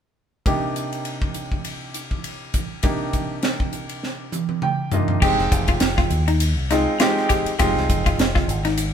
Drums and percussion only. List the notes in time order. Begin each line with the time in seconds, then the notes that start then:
0.46 kick, ride
0.76 hi-hat pedal, ride
0.92 ride
1.05 ride
1.22 kick
1.34 hi-hat pedal, ride
1.52 kick
1.65 ride
1.94 hi-hat pedal, ride
2.11 kick
2.24 ride
2.54 kick, hi-hat pedal, ride
2.83 kick, ride
3.13 kick, hi-hat pedal, ride
3.43 snare, ride
3.60 kick
3.73 hi-hat pedal, ride
3.89 ride
4.03 snare
4.32 hi-hat pedal, high tom
4.49 high tom
4.62 mid tom
4.92 floor tom, hi-hat pedal
5.08 floor tom
5.22 kick, crash
5.39 snare
5.52 kick, hi-hat pedal, ride
5.68 kick, ride
5.80 snare, hi-hat pedal, ride
5.98 kick, snare
6.10 hi-hat pedal, ride
6.28 ride
6.40 hi-hat pedal, ride
6.70 snare, hi-hat pedal, ride
7.00 snare, hi-hat pedal, ride
7.17 snare
7.29 kick, snare, hi-hat pedal, ride
7.46 ride
7.59 kick, hi-hat pedal, ride
7.77 snare
7.89 kick, hi-hat pedal, ride
8.06 kick, ride
8.19 snare, hi-hat pedal, ride
8.36 kick, snare
8.49 hi-hat pedal, ride
8.65 snare, ride
8.77 hi-hat pedal, ride